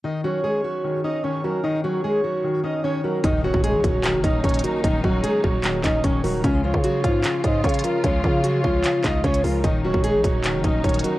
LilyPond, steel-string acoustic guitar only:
\new Staff \with { instrumentName = "Steel-string acoustic guitar" } { \time 4/4 \key ees \minor \tempo 4 = 150 <ees' ees''>8 <ges ges'>8 <aes aes'>8 <ges ges'>4 <ees' ees''>8 <des' des''>8 <ges ges'>8 | <ees' ees''>8 <ges ges'>8 <aes aes'>8 <ges ges'>4 <ees' ees''>8 <des' des''>8 <ges ges'>8 | <ees' ees''>8 <ges ges'>8 <aes aes'>8 <ges ges'>4 <ees' ees''>8 <des' des''>8 <ges ges'>8 | <ees' ees''>8 <ges ges'>8 <aes aes'>8 <ges ges'>4 <ees' ees''>8 <des' des''>8 <ges ges'>8 |
<des' des''>8 <f f'>8 <ges ges'>8 <f f'>4 <ees' ees''>8 <des' des''>8 <f f'>8 | <des' des''>8 <f f'>8 <ges ges'>8 <f f'>4 <ees' ees''>8 <des' des''>8 <f f'>8 | <ees' ees''>8 <ges ges'>8 <aes aes'>8 <ges ges'>4 <ees' ees''>8 <des' des''>8 <ges ges'>8 | }